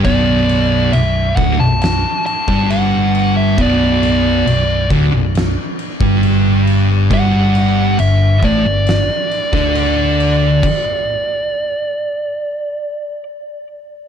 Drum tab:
CC |x-x-x-x-x-x-x-x-|x-x-x-x-x-x-x-x-|x-x-x-x-x-x-x-x-|x---------------|
SD |--------o-------|--------o-------|--------o--o----|----------------|
BD |o-----o----o----|o-----o----o----|o-----o----o----|o---------------|